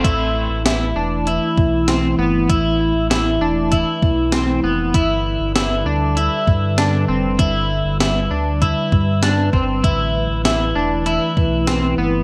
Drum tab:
HH |x-x-x-x-|x-x-x-x-|x-x-x-x-|x-x-x-x-|
SD |--o---o-|--o---o-|--o---o-|--o---o-|
BD |o----o--|o---oo--|o----o--|o---oo-o|

HH |x-x-x-x-|
SD |--o---o-|
BD |o----o--|